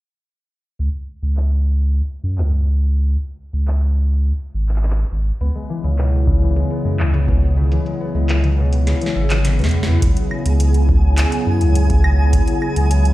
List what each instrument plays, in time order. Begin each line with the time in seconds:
0.79 sub bass C#2, closed hi-hat
1.23 sub bass C#2, closed hi-hat
1.37 clap, closed hi-hat
1.51 closed hi-hat
1.80 closed hi-hat
1.95 closed hi-hat
2.09 closed hi-hat
2.24 sub bass F#2
2.38 sub bass C#2, clap
2.52 closed hi-hat
2.60 closed hi-hat
3.10 closed hi-hat
3.24 closed hi-hat
3.53 sub bass C#2, closed hi-hat
3.68 clap, closed hi-hat
3.82 closed hi-hat
4.11 closed hi-hat
4.25 closed hi-hat
4.40 closed hi-hat
4.54 sub bass G#1
4.69 clap, closed hi-hat
4.76 clap
4.83 clap, closed hi-hat
4.90 clap
4.98 closed hi-hat
5.12 sub bass G#1
5.41 sub bass C#2, analog synth pad C#3, harp B3, closed hi-hat
5.54 analog synth pad F#3, harp G#3, closed hi-hat
5.69 harp E3
5.83 sub bass C#2, harp C#3, analog synth pad B3, closed hi-hat
5.98 harp B2, analog synth pad E4, clap, closed hi-hat
6.13 closed hi-hat
6.27 harp C#3, analog synth pad G#4, kick
6.42 harp E3, closed hi-hat
6.56 harp G#3, closed hi-hat
6.70 harp B3, closed hi-hat
6.85 sub bass F#2, harp G#3
6.99 sub bass C#2, harp E3, clap, closed hi-hat
7.14 harp C#3, closed hi-hat
7.28 harp B2, kick, closed hi-hat
7.57 harp C#3
7.71 harp E3, closed hi-hat
7.86 harp G#3, closed hi-hat
8.00 harp B3
8.15 sub bass C#2, harp G#3
8.29 harp E3, clap, closed hi-hat
8.44 harp C#3, closed hi-hat
8.58 harp B2
8.73 closed hi-hat
8.87 harp C#3, snare, closed hi-hat
9.01 harp E3, closed hi-hat
9.06 snare
9.16 sub bass G#1, harp E4
9.30 harp E3, clap, closed hi-hat
9.45 harp E3, snare, closed hi-hat
9.59 sub bass E2, harp B2, closed hi-hat
9.61 snare, closed hi-hat
9.64 closed hi-hat
9.66 closed hi-hat
9.69 closed hi-hat
9.71 harp B3, closed hi-hat
9.83 snare
9.88 sub bass E2, harp B3
10.02 sub bass C#2, synth texture G#5, kick, closed hi-hat
10.17 closed hi-hat
10.31 claves
10.46 sub bass C#2, closed hi-hat
10.60 closed hi-hat
10.74 closed hi-hat
10.89 kick
11.18 clap, closed hi-hat
11.32 closed hi-hat
11.47 sub bass F#2
11.61 sub bass C#2, closed hi-hat
11.75 closed hi-hat
11.90 kick, closed hi-hat
12.04 claves
12.33 kick, closed hi-hat
12.48 closed hi-hat
12.62 claves
12.76 sub bass C#2, closed hi-hat
12.91 closed hi-hat
13.05 closed hi-hat